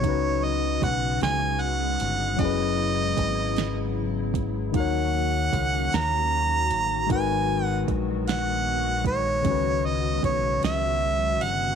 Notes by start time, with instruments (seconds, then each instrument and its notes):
Already playing: analog synth pad G#3 B3 F#4, harmonica C#5
0.00 tine electric piano C#3 C#4, analog synth pad C#3 F#3, kick, closed hi-hat
0.04 fingered electric bass C#2, tine electric piano D#4 F#4
0.09 tine electric piano B4
0.44 harmonica D#5
0.82 fingered electric bass B1, harmonica F#5, kick, closed hi-hat
1.21 fingered electric bass C#2, harmonica G#5, snare, closed hi-hat
1.62 harmonica F#5
2.00 fingered electric bass G1, closed hi-hat
2.36 fingered electric bass F#1, tine electric piano F#3 C#4, analog synth pad E4, harmonica D#5, kick, closed hi-hat
2.41 tine electric piano E4 G#4
2.45 tine electric piano B4
3.17 fingered electric bass G#1, kick, closed hi-hat
3.57 snare, closed hi-hat
4.34 kick, closed hi-hat
4.71 fingered electric bass D#2, tine electric piano D#3 D#4, analog synth pad D#3 A#3 C#4 F#4, kick, closed hi-hat
4.76 tine electric piano F#4 A#4, harmonica F#5
4.80 tine electric piano C#5
5.53 fingered electric bass C#2, kick, closed hi-hat
5.92 fingered electric bass D#2, harmonica A#5, snare, closed hi-hat
6.71 fingered electric bass A1, closed hi-hat
7.06 analog synth pad F#3 G#3 B3, tine electric piano G#3 D#4, kick, closed hi-hat
7.11 fingered electric bass G#1, tine electric piano F#4 A#4, harmonica G#5
7.15 tine electric piano B4
7.66 harmonica F#5
7.88 fingered electric bass A#1, kick, closed hi-hat
8.28 harmonica F#5, snare, closed hi-hat
9.05 harmonica C#5, kick, closed hi-hat
9.42 fingered electric bass C#2, tine electric piano C#3 C#4, analog synth pad C#3 F#3, kick, closed hi-hat
9.47 tine electric piano D#3 F#4
9.51 tine electric piano B4
9.86 harmonica D#5
10.23 fingered electric bass B1, harmonica C#5, kick, closed hi-hat
10.63 fingered electric bass C#2, harmonica E5, snare, closed hi-hat
11.41 fingered electric bass G1, harmonica F#5, closed hi-hat